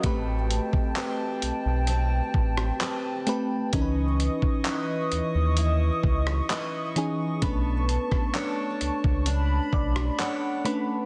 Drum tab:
HH |x-x-x-x-x---x-x-|x-x-x-x-x---x-x-|x-x-x-x-x---x-x-|
CP |----x-------x---|----x-------x---|----x-------x---|
SD |-----------r----|-----------r----|---r-------r----|
BD |o--o------o-----|o--o------o-----|o--o---o--o-----|